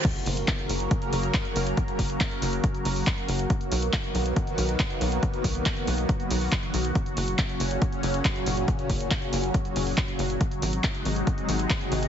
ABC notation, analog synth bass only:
X:1
M:4/4
L:1/8
Q:1/4=139
K:F#
V:1 name="Analog synth bass" clef=bass
z F,,, z F,,, z F,,, z F,,, | z F,,, z F,,, z F,,, z F,,, | z B,,, z B,,, z B,,, z B,,, | z B,,, z B,,, z B,,, z B,,, |
z F,,, z F,,, z F,,, z F,,, | z F,,, z F,,, z F,,, z F,,, | z G,,, z G,,, z G,,, z G,,, |]